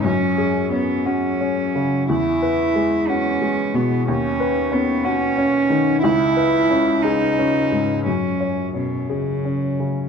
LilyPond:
<<
  \new Staff \with { instrumentName = "Cello" } { \time 6/8 \key fis \dorian \tempo 4. = 59 cis'4 b8 cis'4. | e'4. cis'4 b8 | cis'4 b8 cis'4. | e'4. dis'4. |
cis'4 b,8 cis4. | }
  \new Staff \with { instrumentName = "Upright piano" } { \time 6/8 \key fis \dorian fis,8 gis'8 cis'8 fis'8 cis'8 cis8 | e,8 b'8 gis8 fis'8 gis8 b,8 | dis,8 b'8 cis'8 fis'8 cis'8 dis8 | cis,8 b'8 cis'8 gis'8 cis'8 gis,8 |
fis,8 cis''8 cis'8 gis'8 cis'8 cis8 | }
>>